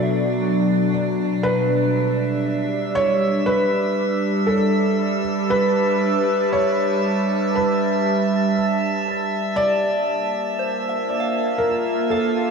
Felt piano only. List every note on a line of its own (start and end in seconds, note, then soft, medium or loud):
0.00 0.89 D5 medium
1.43 3.01 B4 medium
2.95 3.48 C#5 medium
3.46 4.52 B4 medium
4.47 5.20 A4 medium
5.50 6.55 B4 medium
6.53 7.57 C#5 medium
7.55 8.52 B4 medium
9.56 11.66 D5 medium
11.58 12.12 A#4 medium
12.10 12.51 A4 medium